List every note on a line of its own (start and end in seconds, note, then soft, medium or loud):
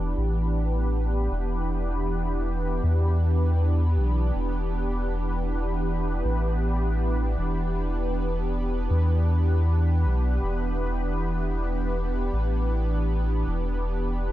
0.00 0.15 E1 loud
0.00 14.32 E3 medium
0.00 14.32 B3 medium
0.00 14.32 D4 medium
0.00 14.32 G4 medium
0.00 14.32 B4 medium
0.18 1.29 A1 medium
1.31 2.80 E1 loud
2.84 3.99 E2 medium
3.97 4.31 B1 loud
4.35 6.22 E1 loud
6.25 7.36 A1 medium
7.39 8.88 E1 loud
8.91 10.06 E2 loud
10.05 10.39 B1 loud
10.43 12.30 E1 loud
12.33 13.44 A1 medium
13.47 14.32 E1 loud